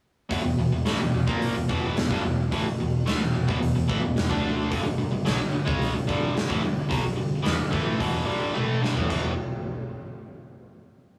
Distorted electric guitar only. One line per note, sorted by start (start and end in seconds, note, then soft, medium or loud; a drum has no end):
0.30 0.43 E2 loud
0.30 0.43 B2 loud
0.44 0.57 E2 medium
0.44 0.58 B2 medium
0.59 0.71 E2 medium
0.59 0.71 B2 medium
0.72 0.86 E2 medium
0.72 0.85 B2 medium
0.85 0.98 A2 medium
0.85 0.99 E3 loud
1.00 1.13 E2 medium
1.00 1.13 B2 medium
1.14 1.28 E2 medium
1.14 1.26 B2 medium
1.26 1.54 A#2 medium
1.26 1.54 F3 loud
1.26 1.54 A#3 loud
1.55 1.67 E2 medium
1.55 1.68 B2 medium
1.68 1.95 E2 medium
1.68 1.96 B2 medium
1.68 1.96 E3 loud
1.97 2.10 E2 medium
1.97 2.10 B2 medium
2.10 2.23 G2 medium
2.10 2.23 D3 loud
2.24 2.46 E2 medium
2.24 2.46 B2 medium
2.51 2.64 A2 medium
2.51 2.65 E3 medium
2.66 muted distorted electric guitar stroke medium
2.80 3.02 E2 medium
2.80 3.02 B2 medium
3.06 3.19 D3 medium
3.06 3.19 A3 loud
3.21 3.33 E2 medium
3.21 3.33 B2 medium
3.34 3.46 E2 medium
3.34 3.47 B2 medium
3.47 3.60 E2 medium
3.47 3.60 B2 loud
3.61 3.75 E2 medium
3.61 3.75 B2 medium
3.76 3.89 E2 medium
3.76 3.88 B2 medium
3.89 4.02 A2 medium
3.89 4.02 E3 loud
4.03 4.15 E2 medium
4.03 4.16 B2 medium
4.17 4.30 E2 medium
4.17 4.29 B2 medium
4.29 4.70 D3 medium
4.29 4.70 A3 loud
4.29 4.71 D4 loud
4.71 4.84 G2 loud
4.71 4.84 D3 loud
4.85 4.97 G2 medium
4.85 4.97 D3 medium
4.98 5.10 G2 medium
4.98 5.10 D3 medium
5.11 5.26 G2 medium
5.11 5.25 D3 medium
5.25 5.39 B2 loud
5.25 5.39 F#3 loud
5.39 5.52 G2 medium
5.39 5.52 D3 medium
5.53 5.67 G2 medium
5.53 5.65 D3 medium
5.65 5.93 C#3 medium
5.65 5.93 G#3 loud
5.65 5.94 C#4 loud
5.94 6.06 G2 medium
5.94 6.07 D3 medium
6.07 6.34 G2 medium
6.07 6.35 D3 medium
6.07 6.35 G3 loud
6.35 6.49 G2 medium
6.35 6.47 D3 medium
6.48 6.62 A2 medium
6.48 6.62 E3 loud
6.62 6.85 G2 medium
6.62 6.85 D3 medium
6.89 7.03 B2 loud
6.89 7.03 F#3 loud
7.03 muted distorted electric guitar stroke medium
7.16 7.39 G2 medium
7.16 7.39 D3 medium
7.43 7.57 E3 medium
7.43 7.57 B3 loud
7.57 7.72 G2 medium
7.57 7.71 D3 medium
7.71 7.99 A2 medium
7.71 7.98 E3 loud
7.71 7.99 A3 loud
7.99 8.25 E2 medium
7.99 8.25 B2 loud
7.99 8.26 E3 loud
8.25 8.53 G2 medium
8.25 8.53 D3 loud
8.25 8.53 G3 loud
8.53 8.81 A2 medium
8.53 8.81 E3 medium
8.53 8.81 A3 loud
8.81 8.95 G2 medium
8.81 8.95 D3 loud
8.95 9.08 E3 loud
8.95 9.08 B3 loud
9.08 9.31 E2 medium
9.08 9.31 B2 loud
9.08 9.32 E3 loud